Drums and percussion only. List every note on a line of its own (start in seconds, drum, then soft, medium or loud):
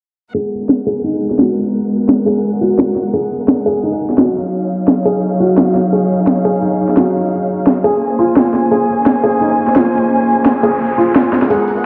0.69 snare loud
1.30 snare soft
1.39 snare loud
2.09 snare loud
2.78 snare loud
2.96 snare soft
3.48 snare loud
4.10 snare soft
4.18 snare loud
4.88 snare loud
5.57 snare loud
5.75 snare soft
6.27 snare loud
6.89 snare soft
6.97 snare loud
7.67 snare loud
8.36 snare loud
8.54 snare soft
9.06 snare loud
9.68 snare soft
9.76 snare loud
10.46 snare loud
11.15 snare loud
11.33 snare medium
11.42 snare medium
11.50 closed hi-hat medium
11.60 closed hi-hat soft
11.68 closed hi-hat medium
11.76 closed hi-hat soft